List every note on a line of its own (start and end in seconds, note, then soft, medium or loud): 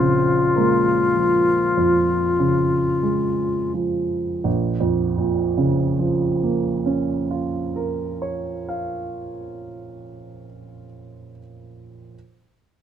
0.00 1.75 A#1 soft
0.00 0.93 C#3 soft
0.00 0.53 C4 soft
0.00 3.73 F4 soft
0.00 0.57 C5 medium
0.56 1.54 G#3 soft
0.56 3.70 A#3 soft
0.56 3.72 A#4 soft
1.17 2.15 F3 soft
1.77 2.77 F2 soft
2.39 3.44 C#3 soft
3.03 4.16 G#3 soft
3.74 4.45 F3 soft
4.44 9.30 A#1 soft
4.80 9.66 F2 soft
5.17 10.04 A#2 soft
5.58 10.44 C#3 soft
5.99 10.85 F3 soft
6.43 11.29 A#3 soft
6.86 11.39 C#4 soft
7.31 11.39 F4 soft
7.76 11.39 A#4 soft
8.22 11.39 C#5 soft
8.69 11.39 F5 soft